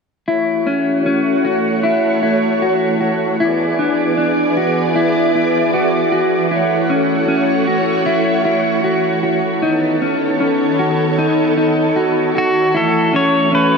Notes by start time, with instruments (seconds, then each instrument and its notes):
0.27 string machine E3 A3 F#4 C#5, clean electric guitar E4
0.67 clean electric guitar C#4
1.06 clean electric guitar C#4
1.45 clean electric guitar F#4
1.83 clean electric guitar E4
2.23 clean electric guitar E4
2.62 clean electric guitar F#4
3.01 clean electric guitar F#4
3.40 string machine B3 G#4 D5, clean electric guitar E4
3.79 clean electric guitar D4
4.18 clean electric guitar D4
4.57 clean electric guitar F#4
4.96 clean electric guitar E4
5.35 clean electric guitar E4
5.74 clean electric guitar F#4
6.12 clean electric guitar F#4
6.51 string machine A3 F#4 C#5, clean electric guitar E4
6.90 clean electric guitar C#4
7.28 clean electric guitar C#4
7.67 clean electric guitar F#4
8.06 clean electric guitar E4
8.45 clean electric guitar E4
8.84 clean electric guitar F#4
9.23 clean electric guitar F#4
9.62 string machine D#3 B3 A4 C#5, clean electric guitar D#4
10.02 clean electric guitar C#4
10.40 clean electric guitar C#4
10.79 clean electric guitar F#4
11.18 clean electric guitar D#4
11.57 clean electric guitar D#4
11.96 clean electric guitar F#4
12.35 clean electric guitar F#4, pedal steel guitar F#4
12.74 string machine E3 A3 F#4 C#5, clean electric guitar E4, pedal steel guitar A4
13.13 clean electric guitar C#4, pedal steel guitar C#5
13.52 clean electric guitar C#4, pedal steel guitar B4